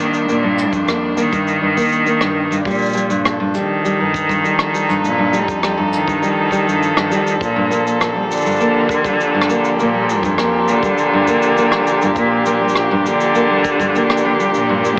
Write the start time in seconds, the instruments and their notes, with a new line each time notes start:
Already playing: cello D#3, string quartet D#3 G3 D4
0.00 nylon-string guitar A#3, shaker
0.14 shaker
0.28 cello A#2, nylon-string guitar A#3, shaker
0.43 nylon-string guitar G2
0.59 shaker
0.73 cello F2, nylon-string guitar G2, kick, shaker
0.87 nylon-string guitar A#3, cross-stick, shaker
1.17 cello D#3, nylon-string guitar A#3, shaker
1.31 nylon-string guitar G2, kick, shaker
1.48 shaker
1.62 nylon-string guitar G2
1.77 nylon-string guitar A#3, kick, shaker
1.81 shaker
1.85 shaker
1.88 shaker
1.92 shaker
2.06 nylon-string guitar A#3, shaker
2.21 nylon-string guitar G2, cross-stick
2.51 nylon-string guitar G2, shaker
2.65 cello A#2, string quartet F3, nylon-string guitar G3, kick, shaker
2.70 shaker
2.74 shaker
2.78 shaker
2.82 shaker
2.86 shaker
2.89 shaker
2.93 nylon-string guitar G3, shaker
2.97 shaker
3.10 nylon-string guitar G2, shaker
3.23 string quartet A4, cross-stick, shaker
3.40 nylon-string guitar G2
3.54 cello D#3, nylon-string guitar G3, shaker
3.85 nylon-string guitar G3, shaker
3.97 nylon-string guitar G2, string quartet D#4
4.14 kick, shaker
4.29 nylon-string guitar G2, kick, shaker
4.44 nylon-string guitar G3, shaker
4.59 cross-stick
4.74 nylon-string guitar G3, shaker
4.89 nylon-string guitar G2, shaker
5.04 cello A#2, shaker
5.18 nylon-string guitar G2
5.33 nylon-string guitar G3, shaker
5.48 cello F2, kick, shaker
5.63 nylon-string guitar G3, cross-stick, shaker
5.78 nylon-string guitar G2
5.93 cello D#3, shaker
6.07 nylon-string guitar G2, kick, shaker
6.22 nylon-string guitar G3, shaker
6.51 nylon-string guitar G3, kick, shaker
6.67 nylon-string guitar G2, shaker
6.83 shaker
6.96 nylon-string guitar G2, cross-stick
7.11 nylon-string guitar G3, shaker
7.27 shaker
7.41 cello A#2, string quartet A#2, kick, shaker
7.56 nylon-string guitar G2
7.70 nylon-string guitar A#3, shaker
7.87 shaker
8.01 nylon-string guitar A#3, cross-stick, shaker
8.15 nylon-string guitar G3
8.23 string quartet G4
8.30 cello D3, shaker
8.36 shaker
8.41 shaker
8.45 nylon-string guitar G2, shaker
8.51 shaker
8.56 shaker
8.60 nylon-string guitar A#3, shaker
8.89 nylon-string guitar A#3, kick, shaker
9.04 nylon-string guitar G3, kick, shaker
9.20 shaker
9.35 nylon-string guitar G2
9.41 cross-stick
9.49 nylon-string guitar A#3, shaker
9.65 shaker
9.79 cello A#2, nylon-string guitar A#3, shaker
9.94 nylon-string guitar G3
10.10 shaker
10.23 cello F2, nylon-string guitar G2, kick, shaker
10.38 nylon-string guitar A#3, cross-stick, shaker
10.68 cello D3, nylon-string guitar A#3, shaker
10.83 nylon-string guitar G3, kick, shaker
10.98 shaker
11.13 nylon-string guitar G2
11.28 nylon-string guitar A#3, kick, shaker
11.42 shaker
11.57 nylon-string guitar A#3, shaker
11.72 nylon-string guitar G3, cross-stick
11.87 shaker
12.02 nylon-string guitar G2, shaker
12.16 cello A#2, nylon-string guitar A#3, kick, shaker
12.37 string quartet D4
12.46 nylon-string guitar A#3, shaker
12.61 nylon-string guitar G3
12.69 shaker
12.75 cross-stick, shaker
12.91 nylon-string guitar G2
13.05 cello D3, nylon-string guitar A#3, shaker
13.21 shaker
13.35 nylon-string guitar A#3, shaker
13.50 nylon-string guitar G3
13.65 kick, shaker
13.80 nylon-string guitar G2, kick, shaker
13.95 nylon-string guitar A#3, shaker
14.10 cross-stick
14.17 shaker
14.25 nylon-string guitar A#3
14.40 nylon-string guitar G3, shaker
14.54 cello A#2, shaker
14.69 nylon-string guitar G2
14.84 nylon-string guitar A#3, shaker